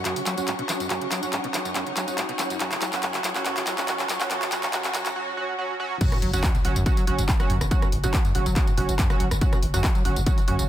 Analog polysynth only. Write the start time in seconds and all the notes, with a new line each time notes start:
0.05 F#3 C#4 F#4
0.38 F#3 C#4 F#4
0.69 F#3 C#4 F#4
0.90 F#3 C#4 F#4
1.23 F#3 C#4 F#4
1.54 F#3 C#4 F#4
1.75 F#3 C#4 F#4
2.08 F#3 C#4 F#4
2.39 F#3 C#4 F#4
2.60 F#3 C#4 F#4
2.93 F#3 C#4 F#4
3.03 F#3 C#4 F#4
3.35 F#3 C#4 F#4
3.45 F#3 C#4 F#4
3.78 F#3 C#4 F#4
3.88 F#3 C#4 F#4
4.21 F#3 C#4 F#4
4.31 F#3 C#4 F#4
4.52 F#3 C#4 F#4
4.73 F#3 C#4 F#4
4.95 F#3 C#4 F#4
5.16 F#3 C#4 F#4
5.37 F#3 C#4 F#4
5.58 F#3 C#4 F#4
5.80 F#3 C#4 F#4
6.01 F#3 C#4 F#4
6.33 F#3 C#4 F#4
6.65 F#3 C#4 F#4
6.86 F#3 C#4 F#4
7.07 F#3 C#4 F#4
7.40 F#3 C#4 F#4
7.71 F#3 C#4 F#4
8.04 F#3 C#4 F#4
8.35 F#3 C#4 F#4
8.56 F#3 C#4 F#4
8.77 F#3 C#4 F#4
9.10 F#3 C#4 F#4
9.41 F#3 C#4 F#4
9.74 F#3 C#4 F#4
10.05 F#3 C#4 F#4
10.26 F#3 C#4 F#4
10.48 F#3 C#4 F#4